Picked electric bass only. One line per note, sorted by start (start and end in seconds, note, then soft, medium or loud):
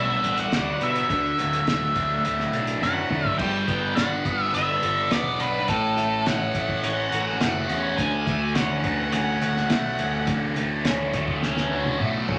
0.00 0.15 B1 medium
0.24 0.44 A1 medium
0.52 0.73 D2 medium
0.81 1.01 B2 medium
1.10 1.30 D2 medium
1.39 1.59 D2 medium
1.68 1.88 D2 medium
1.96 2.16 D2 medium
2.25 2.45 D2 medium
2.54 2.74 B1 medium
2.82 3.02 F#2 medium
3.12 3.32 D3 medium
3.39 3.64 G1 medium
3.68 3.93 G1 medium
3.97 4.21 G1 medium
4.25 4.50 G1 medium
4.54 4.79 G1 medium
4.83 5.08 G1 medium
5.12 5.36 E1 medium
5.40 5.65 B1 medium
5.68 5.93 A1 medium
5.97 6.22 A1 medium
6.26 6.51 A1 medium
6.55 6.79 A1 medium
6.84 7.08 A1 medium
7.13 7.37 A1 medium
7.41 7.65 F#1 medium
7.69 7.94 E2 medium
7.98 8.23 D2 medium
8.27 8.52 D2 medium
8.56 8.80 D2 medium
8.84 9.09 D2 medium
9.13 9.38 D2 medium
9.42 9.67 D2 medium
9.71 9.95 B1 medium
10.00 10.24 D2 medium
10.28 10.52 D2 medium
10.57 10.81 D2 medium
10.85 11.10 D2 medium
11.14 11.38 D2 medium
11.43 11.67 D2 medium
11.71 11.96 D2 medium
12.00 12.24 B1 medium
12.28 12.39 D2 medium